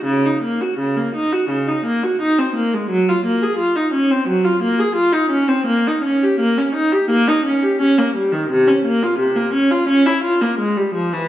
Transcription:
\new Staff \with { instrumentName = "Viola" } { \time 4/4 \key ges \lydian \tempo 4 = 85 des16 ees'16 bes16 ges'16 des16 bes16 ees'16 ges'16 des16 ees'16 bes16 ges'16 ees'16 c'16 bes16 aes16 | ges16 f'16 bes16 aes'16 f'16 ees'16 des'16 c'16 ges16 f'16 bes16 aes'16 f'16 ees'16 des'16 c'16 | \key bes \dorian bes16 ees'16 des'16 g'16 bes16 des'16 ees'16 g'16 bes16 ees'16 des'16 g'16 des'16 bes16 g16 ees16 | c16 des'16 bes16 f'16 c16 bes16 des'16 f'16 des'16 e'16 f'16 bes16 aes16 g16 f16 e16 | }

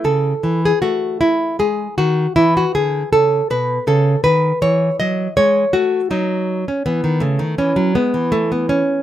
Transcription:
\new Staff \with { instrumentName = "Nylon-string guitar" } { \time 4/4 \key a \lydian \tempo 4 = 80 << { a'8. gis'16 fis'8 e'8 gis'8 fis'8 e'16 fis'16 gis'8 | a'8 b'8 a'8 b'8 cis''8 dis''8 cis''8 fis'8 | \key fis \dorian dis'8. cis'16 b8 a8 cis'8 b8 a16 b16 cis'8 | } \\ { cis8 e8 a4 gis8 dis8 e8 d8 | cis8 b,8 cis8 dis8 e8 fis8 gis8 a8 | fis4 e16 dis16 cis16 dis16 e16 fis16 gis16 e4~ e16 | } >> }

